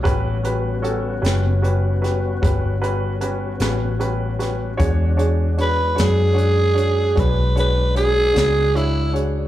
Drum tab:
HH |xxxxxxxxxxxx|xxxxxxxxxxxx|
SD |---o-o---o-o|---o-----o--|
BD |o-----o-----|o-----o-----|